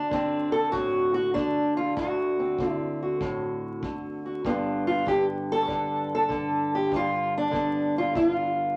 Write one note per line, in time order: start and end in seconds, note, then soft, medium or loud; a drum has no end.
0.00 1.95 D2 medium
0.00 0.11 D3 medium
0.00 0.52 D4 medium
0.11 1.33 D3 medium
0.11 1.15 C4 medium
0.11 kick medium
0.52 0.72 A4 loud
0.72 1.35 A2 medium
0.72 1.13 F#4 loud
0.72 kick medium
1.14 1.34 F#4 medium
1.34 2.58 D3 medium
1.34 1.76 D4 medium
1.34 kick medium
1.77 1.96 F4 medium
1.96 4.44 D2 medium
1.96 2.70 F#4 medium
1.96 kick medium
2.40 2.59 C4 soft
2.59 3.82 D3 medium
2.59 4.43 C4 soft
2.59 kick medium
2.70 3.00 E4 medium
3.02 4.24 F#4 soft
3.21 3.83 A2 medium
3.21 kick medium
3.83 4.44 D3 medium
3.83 kick medium
4.26 4.42 F#4 soft
4.45 6.89 G2 medium
4.45 5.05 D3 soft
4.45 6.90 B3 medium
4.45 7.38 D4 soft
4.45 4.87 F4 soft
4.45 kick medium
4.87 5.07 F4 medium
5.06 5.66 D3 medium
5.06 5.24 G4 loud
5.06 kick medium
5.52 6.12 A4 loud
5.67 6.28 D3 medium
5.67 kick medium
6.15 6.74 A4 loud
6.29 7.50 D3 medium
6.29 kick medium
6.75 6.93 G4 medium
6.91 8.77 G2 medium
6.91 kick medium
6.96 7.35 F4 medium
7.38 7.97 D4 medium
7.51 8.14 D3 medium
7.51 8.77 B3 soft
7.51 kick medium
7.98 8.15 F4 medium
8.15 8.77 D3 medium
8.15 8.27 E4 medium
8.15 kick medium
8.27 8.77 F4 medium